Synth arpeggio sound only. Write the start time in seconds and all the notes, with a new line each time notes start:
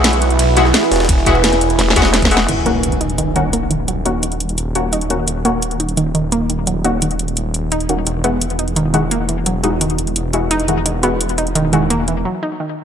2.48 D#3
2.66 A#3
3.01 D#4
3.18 D#3
3.36 D#3
3.53 A#3
3.71 D#3
3.88 F#3
4.05 D#4
4.23 D#3
4.93 D#4
5.10 D#3
5.28 D#3
5.45 A#3
5.80 D#4
5.97 D#3
6.15 D#3
6.32 A#3
6.50 D#3
6.67 F#3
6.84 D#4
7.02 D#3
7.72 D#4
7.89 D#3
8.07 D#3
8.24 B3
8.59 D#4
8.76 D#3
8.94 D#3
9.11 A#3
9.29 E3
9.46 F#3
9.64 D#4
9.81 D#3
10.51 D#4
10.68 D#3
10.86 D#3
11.03 B3
11.38 D#4
11.55 D#3
11.73 D#3
11.90 A#3
12.08 E3
12.25 F#3
12.43 D#4
12.60 D#3